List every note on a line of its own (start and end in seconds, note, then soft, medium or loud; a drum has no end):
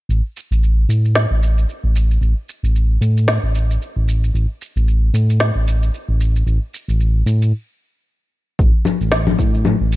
0.09 0.22 A1 medium
0.09 shaker soft
0.37 shaker medium
0.51 0.86 A1 medium
0.51 shaker soft
0.63 shaker soft
0.89 1.26 A2 medium
0.89 shaker medium
1.05 shaker soft
1.15 snare medium
1.15 shaker soft
1.31 1.65 A1 medium
1.43 shaker medium
1.58 shaker soft
1.69 shaker soft
1.84 2.18 A1 medium
1.96 shaker medium
2.11 shaker soft
2.21 2.34 A1 medium
2.21 shaker soft
2.49 shaker medium
2.63 2.98 A1 medium
2.63 shaker soft
2.76 shaker soft
3.01 3.39 A2 loud
3.01 shaker medium
3.17 shaker soft
3.28 snare medium
3.28 shaker soft
3.43 3.78 A1 medium
3.55 shaker medium
3.71 shaker soft
3.82 shaker soft
3.96 4.31 A1 medium
4.08 shaker medium
4.24 shaker soft
4.34 4.47 A1 medium
4.34 shaker soft
4.61 shaker medium
4.76 5.10 A1 medium
4.76 shaker soft
4.88 shaker soft
5.14 5.51 A2 loud
5.14 shaker medium
5.30 shaker soft
5.40 snare medium
5.40 shaker soft
5.55 5.90 A1 medium
5.68 shaker medium
5.83 shaker soft
5.94 shaker soft
6.09 6.43 A1 medium
6.21 shaker medium
6.36 shaker soft
6.47 6.59 A1 loud
6.47 shaker soft
6.74 shaker medium
6.88 7.23 A1 medium
6.88 shaker soft
7.00 shaker soft
7.26 7.53 A2 medium
7.26 shaker medium
7.42 shaker soft
8.59 8.71 A1 medium
8.59 kick loud
8.59 shaker soft
8.85 low conga medium
8.85 shaker medium
9.01 9.35 A1 medium
9.01 shaker soft
9.12 snare medium
9.12 shaker soft
9.27 low conga medium
9.39 9.76 A2 medium
9.39 kick loud
9.39 shaker medium
9.54 shaker soft
9.65 low conga medium
9.65 shaker soft
9.80 9.96 A1 medium
9.92 shaker medium